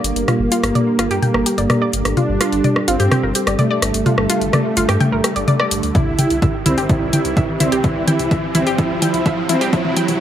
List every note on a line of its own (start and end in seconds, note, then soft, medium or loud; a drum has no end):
0.00 5.91 G3 medium
0.00 2.08 A#3 loud
0.00 5.91 D4 medium
0.00 5.91 G4 medium
0.00 5.91 A4 medium
0.00 riser medium
0.04 0.13 G1 medium
0.04 closed hi-hat loud
0.16 0.25 G1 medium
0.16 closed hi-hat medium
0.28 0.34 F4 medium
0.28 cross-stick soft
0.28 closed hi-hat soft
0.28 mid tom soft
0.40 0.48 G1 medium
0.52 0.61 F4 loud
0.52 closed hi-hat loud
0.64 0.72 G1 medium
0.64 cross-stick soft
0.64 closed hi-hat soft
0.75 0.81 D5 medium
0.75 closed hi-hat soft
0.75 mid tom medium
0.99 1.08 G1 medium
0.99 1.08 F4 loud
0.99 cross-stick soft
0.99 closed hi-hat loud
1.11 1.19 G2 medium
1.11 1.20 G4 loud
1.11 closed hi-hat soft
1.23 1.28 G5 medium
1.23 closed hi-hat soft
1.23 mid tom medium
1.34 1.43 G1 medium
1.34 1.44 A#4 medium
1.34 cross-stick medium
1.46 1.55 G4 medium
1.46 closed hi-hat loud
1.58 1.67 G1 medium
1.58 1.69 D5 medium
1.58 closed hi-hat soft
1.70 1.75 D5 medium
1.70 cross-stick soft
1.70 closed hi-hat soft
1.70 mid tom medium
1.82 1.91 D5 loud
1.93 2.02 G1 medium
1.93 closed hi-hat loud
2.05 2.14 G1 medium
2.05 cross-stick soft
2.05 closed hi-hat soft
2.17 2.78 D4 loud
2.17 2.23 F4 medium
2.17 closed hi-hat soft
2.17 mid tom medium
2.29 2.37 G1 medium
2.41 2.50 F4 loud
2.41 cross-stick soft
2.41 closed hi-hat loud
2.52 2.61 G1 medium
2.52 closed hi-hat soft
2.64 2.70 D5 medium
2.64 closed hi-hat soft
2.64 mid tom medium
2.76 cross-stick medium
2.88 2.97 G1 medium
2.88 3.49 C4 loud
2.88 2.97 F4 loud
2.88 closed hi-hat loud
3.00 3.08 G2 medium
3.00 3.09 G4 loud
3.00 closed hi-hat soft
3.12 3.17 G5 medium
3.12 cross-stick medium
3.12 closed hi-hat soft
3.12 mid tom medium
3.23 3.32 G1 medium
3.23 3.33 A#4 medium
3.35 3.45 G4 medium
3.35 closed hi-hat loud
3.47 3.56 G1 medium
3.47 3.58 D5 medium
3.47 cross-stick medium
3.47 closed hi-hat soft
3.59 5.86 A3 loud
3.59 3.64 D5 medium
3.59 closed hi-hat soft
3.59 mid tom medium
3.71 3.80 D5 loud
3.82 3.91 G1 loud
3.82 cross-stick soft
3.82 closed hi-hat loud
3.94 4.03 G1 medium
3.94 closed hi-hat medium
4.06 4.12 F4 medium
4.06 closed hi-hat soft
4.06 mid tom medium
4.18 4.26 G1 medium
4.18 cross-stick medium
4.30 4.39 F4 loud
4.30 closed hi-hat loud
4.41 4.50 G1 medium
4.41 closed hi-hat soft
4.53 4.59 D5 medium
4.53 cross-stick medium
4.53 closed hi-hat soft
4.53 mid tom medium
4.77 4.85 G1 loud
4.77 4.86 F4 loud
4.77 closed hi-hat loud
4.89 4.97 G2 medium
4.89 4.98 G4 loud
4.89 cross-stick medium
4.89 closed hi-hat soft
5.00 5.06 G5 medium
5.00 closed hi-hat soft
5.00 mid tom medium
5.12 5.21 G1 medium
5.12 5.22 A#4 medium
5.24 5.33 G4 medium
5.24 cross-stick medium
5.24 closed hi-hat loud
5.36 5.45 G1 medium
5.36 5.47 D5 medium
5.36 closed hi-hat soft
5.48 5.53 D5 medium
5.48 closed hi-hat soft
5.48 mid tom medium
5.60 5.69 D5 loud
5.60 cross-stick medium
5.71 5.80 G1 medium
5.71 closed hi-hat loud
5.83 5.92 D2 medium
5.83 closed hi-hat soft
5.95 10.20 C4 medium
5.95 6.01 E4 medium
5.95 6.56 E4 loud
5.95 10.20 G4 medium
5.95 9.69 D5 medium
5.95 10.20 E5 medium
5.95 kick loud
5.95 closed hi-hat soft
5.95 mid tom medium
6.07 6.15 C2 medium
6.19 6.24 G5 medium
6.19 closed hi-hat loud
6.19 mid tom medium
6.30 6.39 C2 medium
6.30 closed hi-hat soft
6.42 6.48 E5 medium
6.42 kick loud
6.42 closed hi-hat soft
6.42 mid tom medium
6.66 6.74 C2 loud
6.66 6.88 C4 medium
6.66 6.75 E4 loud
6.66 closed hi-hat loud
6.66 mid tom medium
6.78 6.86 G1 medium
6.78 6.87 G4 medium
6.78 closed hi-hat soft
6.89 7.51 E4 loud
6.89 6.95 E4 medium
6.89 kick loud
6.89 closed hi-hat soft
6.89 mid tom medium
7.01 7.10 C2 medium
7.13 7.19 G5 medium
7.13 closed hi-hat loud
7.13 mid tom medium
7.25 7.34 C2 medium
7.25 closed hi-hat soft
7.37 7.42 E5 medium
7.37 kick loud
7.37 closed hi-hat soft
7.37 mid tom medium
7.60 7.69 C2 loud
7.60 7.82 C4 medium
7.60 7.70 E4 loud
7.60 closed hi-hat loud
7.60 mid tom medium
7.72 7.81 C2 medium
7.72 7.81 G4 loud
7.72 closed hi-hat medium
7.84 8.45 E4 loud
7.84 7.90 E4 medium
7.84 kick loud
7.84 closed hi-hat soft
7.84 mid tom medium
7.96 8.04 C2 medium
8.08 8.13 G5 medium
8.08 closed hi-hat loud
8.08 mid tom medium
8.19 8.28 C2 medium
8.19 closed hi-hat soft
8.31 8.37 E5 medium
8.31 kick loud
8.31 closed hi-hat soft
8.31 mid tom medium
8.55 8.63 C2 loud
8.55 8.77 C4 medium
8.55 8.64 E4 loud
8.55 closed hi-hat loud
8.55 mid tom medium
8.67 8.75 G1 medium
8.67 8.76 G4 loud
8.67 closed hi-hat soft
8.78 8.84 E4 medium
8.78 9.40 E4 loud
8.78 kick loud
8.78 closed hi-hat soft
8.78 mid tom medium
8.90 8.99 C2 medium
9.02 9.08 G5 medium
9.02 closed hi-hat loud
9.02 mid tom medium
9.14 9.22 C2 medium
9.14 closed hi-hat soft
9.26 9.31 E5 medium
9.26 kick loud
9.26 closed hi-hat soft
9.26 mid tom medium
9.49 9.58 C2 medium
9.49 9.71 C4 medium
9.49 9.59 E4 loud
9.49 closed hi-hat loud
9.49 mid tom medium
9.61 9.70 C2 medium
9.61 9.70 G4 loud
9.61 closed hi-hat soft
9.73 9.79 E4 medium
9.73 10.18 E4 loud
9.73 10.20 C5 medium
9.73 kick loud
9.73 closed hi-hat soft
9.73 mid tom medium
9.85 9.93 C2 medium
9.85 mid tom medium
9.97 10.02 G5 medium
9.97 closed hi-hat loud
9.97 mid tom medium
10.08 10.17 C2 medium
10.08 closed hi-hat soft
10.08 mid tom medium